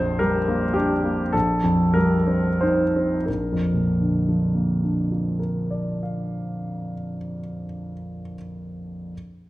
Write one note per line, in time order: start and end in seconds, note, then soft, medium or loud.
0.00 1.29 A#1 soft
0.00 0.37 F2 soft
0.00 0.20 C5 medium
0.19 0.64 G3 soft
0.19 0.74 A#4 medium
0.48 0.92 A#3 soft
0.74 1.21 D4 soft
0.74 1.32 G4 medium
1.04 1.33 A#3 soft
1.32 3.23 A#1 soft
1.32 1.95 A4 medium
1.63 2.15 F2 soft
1.94 2.49 G3 soft
1.94 2.62 A#4 medium
2.27 2.82 C4 soft
2.61 3.15 D#4 soft
2.61 3.26 C5 soft
2.96 3.27 C4 soft
3.26 6.93 A#1 soft
3.26 5.38 A#4 soft
3.52 7.17 F2 soft
3.74 7.39 A#2 soft
4.00 7.65 D3 soft
4.28 7.93 F3 soft
4.55 8.20 A#3 soft
4.83 8.36 D4 soft
5.12 8.36 F4 soft
5.39 8.35 A#4 soft
5.71 8.35 D5 soft
6.03 8.35 F5 soft